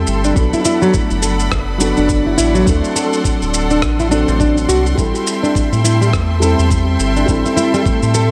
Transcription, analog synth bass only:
0, 0, Header, 1, 2, 480
1, 0, Start_track
1, 0, Tempo, 576923
1, 301, Time_signature, 4, 2, 24, 8
1, 6914, End_track
2, 0, Start_track
2, 0, Title_t, "Analog synth bass"
2, 0, Program_c, 0, 38
2, 62, Note_on_c, 0, 31, 93
2, 271, Note_off_c, 0, 31, 0
2, 301, Note_on_c, 0, 35, 96
2, 420, Note_off_c, 0, 35, 0
2, 921, Note_on_c, 0, 30, 90
2, 1236, Note_off_c, 0, 30, 0
2, 1261, Note_on_c, 0, 30, 79
2, 1607, Note_off_c, 0, 30, 0
2, 1645, Note_on_c, 0, 30, 83
2, 1958, Note_off_c, 0, 30, 0
2, 1985, Note_on_c, 0, 33, 94
2, 2193, Note_off_c, 0, 33, 0
2, 2221, Note_on_c, 0, 38, 98
2, 2341, Note_off_c, 0, 38, 0
2, 2845, Note_on_c, 0, 26, 93
2, 3181, Note_on_c, 0, 33, 88
2, 3194, Note_off_c, 0, 26, 0
2, 3528, Note_off_c, 0, 33, 0
2, 3560, Note_on_c, 0, 33, 76
2, 3875, Note_off_c, 0, 33, 0
2, 3898, Note_on_c, 0, 36, 91
2, 4109, Note_off_c, 0, 36, 0
2, 4139, Note_on_c, 0, 33, 95
2, 4260, Note_off_c, 0, 33, 0
2, 4760, Note_on_c, 0, 45, 94
2, 5100, Note_on_c, 0, 40, 84
2, 5112, Note_off_c, 0, 45, 0
2, 5447, Note_off_c, 0, 40, 0
2, 5481, Note_on_c, 0, 40, 79
2, 5796, Note_off_c, 0, 40, 0
2, 5819, Note_on_c, 0, 31, 98
2, 6029, Note_off_c, 0, 31, 0
2, 6057, Note_on_c, 0, 33, 99
2, 6179, Note_off_c, 0, 33, 0
2, 6675, Note_on_c, 0, 45, 92
2, 6914, Note_off_c, 0, 45, 0
2, 6914, End_track
0, 0, End_of_file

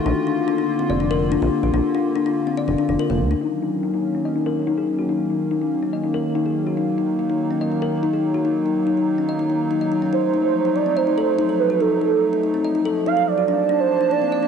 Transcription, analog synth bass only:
0, 0, Header, 1, 2, 480
1, 0, Start_track
1, 0, Tempo, 419580
1, 65, Time_signature, 4, 2, 24, 8
1, 16563, End_track
2, 0, Start_track
2, 0, Title_t, "Analog synth bass"
2, 0, Program_c, 0, 38
2, 65, Note_on_c, 0, 34, 103
2, 147, Note_off_c, 0, 34, 0
2, 1025, Note_on_c, 0, 29, 81
2, 1565, Note_off_c, 0, 29, 0
2, 1625, Note_on_c, 0, 34, 102
2, 1707, Note_off_c, 0, 34, 0
2, 1865, Note_on_c, 0, 34, 81
2, 1947, Note_off_c, 0, 34, 0
2, 1985, Note_on_c, 0, 34, 102
2, 2067, Note_off_c, 0, 34, 0
2, 3065, Note_on_c, 0, 29, 84
2, 3147, Note_off_c, 0, 29, 0
2, 3305, Note_on_c, 0, 29, 92
2, 3387, Note_off_c, 0, 29, 0
2, 3545, Note_on_c, 0, 29, 95
2, 3665, Note_on_c, 0, 38, 93
2, 3682, Note_off_c, 0, 29, 0
2, 3830, Note_off_c, 0, 38, 0
2, 16563, End_track
0, 0, End_of_file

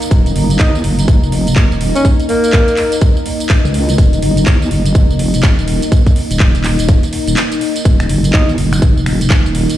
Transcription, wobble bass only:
0, 0, Header, 1, 2, 480
1, 0, Start_track
1, 0, Key_signature, -6, "minor"
1, 0, Tempo, 483871
1, 111, Time_signature, 4, 2, 24, 8
1, 9697, End_track
2, 0, Start_track
2, 0, Title_t, "Wobble bass"
2, 0, Program_c, 0, 39
2, 111, Note_on_c, 0, 27, 101
2, 336, Note_off_c, 0, 27, 0
2, 350, Note_on_c, 0, 30, 95
2, 576, Note_off_c, 0, 30, 0
2, 590, Note_on_c, 0, 39, 94
2, 816, Note_off_c, 0, 39, 0
2, 831, Note_on_c, 0, 30, 98
2, 1194, Note_off_c, 0, 30, 0
2, 1218, Note_on_c, 0, 29, 101
2, 1674, Note_off_c, 0, 29, 0
2, 1698, Note_on_c, 0, 27, 97
2, 1914, Note_off_c, 0, 27, 0
2, 3617, Note_on_c, 0, 37, 94
2, 3936, Note_off_c, 0, 37, 0
2, 3950, Note_on_c, 0, 27, 101
2, 4176, Note_off_c, 0, 27, 0
2, 4190, Note_on_c, 0, 30, 99
2, 4415, Note_off_c, 0, 30, 0
2, 4430, Note_on_c, 0, 39, 95
2, 4655, Note_off_c, 0, 39, 0
2, 4670, Note_on_c, 0, 30, 100
2, 5034, Note_off_c, 0, 30, 0
2, 5057, Note_on_c, 0, 29, 102
2, 5514, Note_off_c, 0, 29, 0
2, 5536, Note_on_c, 0, 27, 98
2, 5753, Note_off_c, 0, 27, 0
2, 6257, Note_on_c, 0, 27, 97
2, 6714, Note_off_c, 0, 27, 0
2, 6736, Note_on_c, 0, 27, 94
2, 6953, Note_off_c, 0, 27, 0
2, 7217, Note_on_c, 0, 27, 92
2, 7296, Note_off_c, 0, 27, 0
2, 7790, Note_on_c, 0, 27, 100
2, 8016, Note_off_c, 0, 27, 0
2, 8030, Note_on_c, 0, 30, 93
2, 8255, Note_off_c, 0, 30, 0
2, 8271, Note_on_c, 0, 39, 97
2, 8496, Note_off_c, 0, 39, 0
2, 8509, Note_on_c, 0, 30, 99
2, 8873, Note_off_c, 0, 30, 0
2, 8896, Note_on_c, 0, 29, 94
2, 9353, Note_off_c, 0, 29, 0
2, 9377, Note_on_c, 0, 27, 97
2, 9594, Note_off_c, 0, 27, 0
2, 9697, End_track
0, 0, End_of_file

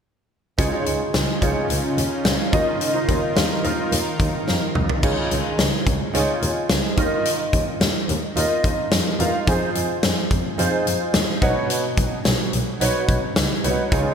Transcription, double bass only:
0, 0, Header, 1, 2, 480
1, 0, Start_track
1, 0, Tempo, 555556
1, 506, Time_signature, 4, 2, 24, 8
1, 12217, End_track
2, 0, Start_track
2, 0, Title_t, "Double bass"
2, 0, Program_c, 0, 43
2, 507, Note_on_c, 0, 37, 86
2, 576, Note_off_c, 0, 37, 0
2, 747, Note_on_c, 0, 37, 72
2, 816, Note_off_c, 0, 37, 0
2, 986, Note_on_c, 0, 37, 86
2, 1055, Note_off_c, 0, 37, 0
2, 1227, Note_on_c, 0, 37, 83
2, 1296, Note_off_c, 0, 37, 0
2, 1464, Note_on_c, 0, 37, 87
2, 1533, Note_off_c, 0, 37, 0
2, 1705, Note_on_c, 0, 39, 74
2, 1774, Note_off_c, 0, 39, 0
2, 1945, Note_on_c, 0, 37, 82
2, 2014, Note_off_c, 0, 37, 0
2, 2187, Note_on_c, 0, 39, 80
2, 2256, Note_off_c, 0, 39, 0
2, 2667, Note_on_c, 0, 39, 85
2, 2736, Note_off_c, 0, 39, 0
2, 2906, Note_on_c, 0, 39, 94
2, 2975, Note_off_c, 0, 39, 0
2, 3146, Note_on_c, 0, 39, 85
2, 3215, Note_off_c, 0, 39, 0
2, 3387, Note_on_c, 0, 39, 90
2, 3456, Note_off_c, 0, 39, 0
2, 3626, Note_on_c, 0, 39, 81
2, 3695, Note_off_c, 0, 39, 0
2, 3868, Note_on_c, 0, 41, 88
2, 3937, Note_off_c, 0, 41, 0
2, 4109, Note_on_c, 0, 36, 82
2, 4178, Note_off_c, 0, 36, 0
2, 4347, Note_on_c, 0, 37, 96
2, 4417, Note_off_c, 0, 37, 0
2, 4589, Note_on_c, 0, 37, 82
2, 4658, Note_off_c, 0, 37, 0
2, 4828, Note_on_c, 0, 37, 89
2, 4897, Note_off_c, 0, 37, 0
2, 5069, Note_on_c, 0, 37, 90
2, 5138, Note_off_c, 0, 37, 0
2, 5308, Note_on_c, 0, 37, 85
2, 5377, Note_off_c, 0, 37, 0
2, 5548, Note_on_c, 0, 39, 79
2, 5617, Note_off_c, 0, 39, 0
2, 5787, Note_on_c, 0, 37, 84
2, 5856, Note_off_c, 0, 37, 0
2, 6027, Note_on_c, 0, 39, 88
2, 6096, Note_off_c, 0, 39, 0
2, 6508, Note_on_c, 0, 39, 81
2, 6577, Note_off_c, 0, 39, 0
2, 6746, Note_on_c, 0, 39, 86
2, 6815, Note_off_c, 0, 39, 0
2, 6987, Note_on_c, 0, 39, 84
2, 7056, Note_off_c, 0, 39, 0
2, 7227, Note_on_c, 0, 39, 91
2, 7296, Note_off_c, 0, 39, 0
2, 7467, Note_on_c, 0, 39, 80
2, 7536, Note_off_c, 0, 39, 0
2, 7708, Note_on_c, 0, 41, 88
2, 7777, Note_off_c, 0, 41, 0
2, 7947, Note_on_c, 0, 40, 86
2, 8016, Note_off_c, 0, 40, 0
2, 8187, Note_on_c, 0, 41, 107
2, 8256, Note_off_c, 0, 41, 0
2, 8428, Note_on_c, 0, 41, 85
2, 8497, Note_off_c, 0, 41, 0
2, 8666, Note_on_c, 0, 41, 90
2, 8735, Note_off_c, 0, 41, 0
2, 8908, Note_on_c, 0, 41, 84
2, 8977, Note_off_c, 0, 41, 0
2, 9146, Note_on_c, 0, 41, 95
2, 9215, Note_off_c, 0, 41, 0
2, 9385, Note_on_c, 0, 41, 80
2, 9454, Note_off_c, 0, 41, 0
2, 9626, Note_on_c, 0, 39, 86
2, 9695, Note_off_c, 0, 39, 0
2, 9867, Note_on_c, 0, 35, 83
2, 9936, Note_off_c, 0, 35, 0
2, 10346, Note_on_c, 0, 35, 81
2, 10416, Note_off_c, 0, 35, 0
2, 10587, Note_on_c, 0, 35, 98
2, 10656, Note_off_c, 0, 35, 0
2, 10826, Note_on_c, 0, 35, 85
2, 10895, Note_off_c, 0, 35, 0
2, 11067, Note_on_c, 0, 35, 92
2, 11136, Note_off_c, 0, 35, 0
2, 11306, Note_on_c, 0, 35, 79
2, 11375, Note_off_c, 0, 35, 0
2, 11547, Note_on_c, 0, 37, 84
2, 11616, Note_off_c, 0, 37, 0
2, 11788, Note_on_c, 0, 36, 93
2, 11857, Note_off_c, 0, 36, 0
2, 12027, Note_on_c, 0, 37, 94
2, 12096, Note_off_c, 0, 37, 0
2, 12217, End_track
0, 0, End_of_file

